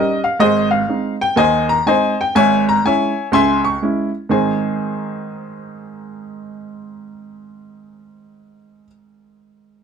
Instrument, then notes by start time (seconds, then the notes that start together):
upright piano
Already playing: G3 C#4 D#4 G4 A#4 D#5
0.24 F5
0.40 G#1 G#2 G#4 C5 D#5
0.71 F5
0.88 G#3 C4 D#4
1.21 G5
1.36 D#2 D#3 C5 D#5 G#5
1.69 A#5
1.86 G#3 C4 D#4 C5 D#5 G#5
2.21 G5
2.35 G#1 G#2 C#5 E5 G#5
2.69 A#5
2.84 G#3 C#4 E4 C#5 E5 G#5
3.32 C#2 C#3 E5 G#5 C6
3.64 C#6
3.82 G#3 C#4 E4
4.29 G#2 D#3 C4 D#4 G#4 C5 G#5